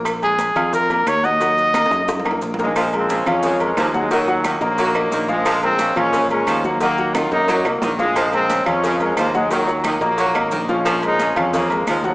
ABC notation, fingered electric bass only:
X:1
M:4/4
L:1/8
Q:1/4=178
K:Bbm
V:1 name="Fingered electric bass" clef=bass
B,,,3 F,,3 E,,2- | E,,3 G,,3 B,,,2- | B,,,3 F,,3 E,,2- | E,,3 B,,,3 B,,,2- |
B,,,3 B,,3 E,,2- | E,,3 G,,2 C,, B,,,2- | B,,,3 F,,3 E,,2- | E,,3 B,,,2 A,,, B,,,2- |
B,,,3 F,,3 E,,2 |]